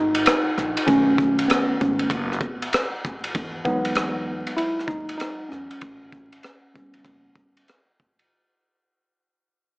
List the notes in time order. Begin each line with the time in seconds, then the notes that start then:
Already playing: G#1 D#4
0.15 ride
0.26 cross-stick, hi-hat pedal, ride
0.58 A#1, cross-stick
0.77 ride
0.87 B1 D#3 A3 C#4, kick, ride
1.18 kick
1.39 ride
1.48 B3, cross-stick, hi-hat pedal, ride
1.81 G#1 D#3 A3 C#4, kick
1.99 ride
2.10 F#1, kick, ride
2.32 cross-stick
2.41 kick
2.62 ride
2.73 cross-stick, hi-hat pedal, ride
3.05 kick, cross-stick
3.24 ride
3.35 E2, kick, ride
3.65 F#3 G#3 B3 D#4, kick
3.85 ride
3.95 cross-stick, hi-hat pedal, ride
4.47 ride
4.57 E4, ride
4.79 cross-stick
4.87 D#2 D#4, kick, cross-stick
5.09 ride
5.18 D#4, cross-stick, hi-hat pedal, ride
5.49 E2 C#4, cross-stick
5.71 ride
5.81 A1, kick, ride
6.12 kick
6.32 ride
6.43 cross-stick, hi-hat pedal, ride
6.74 G3 B3 C#4, kick
6.93 G1, ride
7.05 F#1, kick, ride
7.35 kick
7.57 ride
7.68 cross-stick, hi-hat pedal, ride
8.00 kick
8.19 ride